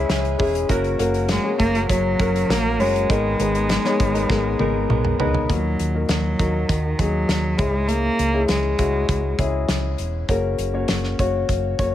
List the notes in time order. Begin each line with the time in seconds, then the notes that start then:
Already playing: G#3 C#4 E4 G#4 B4
0.09 C#2 G#3 C#4 E4 G#4 E5, snare, closed hi-hat
0.25 closed hi-hat
0.38 E1 G#3 C#4 E4 G#4, kick, open hi-hat
0.42 G#4
0.55 closed hi-hat
0.68 F#1 C#3 F#3 A#3 C#4 F#4 A#4, kick, closed hi-hat
0.84 closed hi-hat
0.99 F#1 A#3 C#4 F#4 A#4, closed hi-hat
1.14 C#4 F#4 A#4, closed hi-hat
1.29 G#3, snare, closed hi-hat
1.44 A#3 C#4 F#4 G#4
1.59 F#1 A#3, kick, closed hi-hat
1.75 C#4 F#4 A#4, closed hi-hat
1.89 F#1 F#3 A#3 C#4 F#4 C#5, kick, closed hi-hat
2.19 F#1 F#3 A#3 C#4 F#4 A#4, kick, closed hi-hat
2.36 closed hi-hat
2.49 A#1 F#3 A#3 C#4 F#4 A#4, snare, closed hi-hat
2.79 F#1 F#3 G#3 A#3 C#4 F#4 A#4 C#5, open hi-hat
2.96 closed hi-hat
3.09 G#1 G#2 D#3 G#3 B3 D#4 G#4 A#4, kick, closed hi-hat
3.39 G#1 B3 D#4 G#4 B4, closed hi-hat
3.54 G#3 B3 D#4 A#4, closed hi-hat
3.69 snare, closed hi-hat
3.85 B3 D#4 G#4 C#5, snare, closed hi-hat
4.00 G#1, kick, closed hi-hat
4.14 G#3 B3 D#4 A#4, closed hi-hat
4.29 G#1 B3 D#4 G#4 A#4, kick, snare
4.59 G#1 G#3 B3 D#4 G#4 A#4, high tom
4.89 B1 G#3 B3 D#4 A#4, mid tom
5.05 mid tom
5.19 C#2 G#3 B3 D#4 G#4 A#4 B4, floor tom
5.34 floor tom
5.50 D#2 A#2 F#3 A#3 D#4 F#4 A#4, kick, closed hi-hat
5.79 D#2, closed hi-hat
5.95 A#3 D#4 F#4 A#4
6.09 D#2 F#3, snare, closed hi-hat
6.39 D#2 A#3 D#4 F#4 A#4, kick, closed hi-hat
6.69 D#2 D#3, kick, closed hi-hat
6.98 D#2 F#3 A#3 D#4 F#4 G#4, kick, closed hi-hat
7.29 D#2, snare, closed hi-hat
7.57 C#2 G#2 G#3 C#4 E4 G#4, kick, closed hi-hat
7.87 A#3, closed hi-hat
8.19 C#2, closed hi-hat
8.34 G#3 C#4 E4 G#4
8.48 C#2 G#3, snare, closed hi-hat
8.78 C#2 G#3 C#4 E4 F#4, kick, closed hi-hat
9.09 C#2, kick, closed hi-hat
9.39 C#2 G#3 C#4 E4 G#4, kick, closed hi-hat
9.69 C#2, snare, closed hi-hat
9.98 E1, closed hi-hat
10.29 F#1 C#3 A#3 C#4 F#4 A#4, kick, closed hi-hat
10.58 F#1, closed hi-hat
10.74 A#3 C#4 F#4 C#5
10.88 F#1, snare, closed hi-hat
11.04 snare
11.19 F#1 A#3 C#4 F#4 C#5, kick, closed hi-hat
11.49 F#1, kick, closed hi-hat
11.79 F#1 A#3 C#4 F#4 C#5, kick, closed hi-hat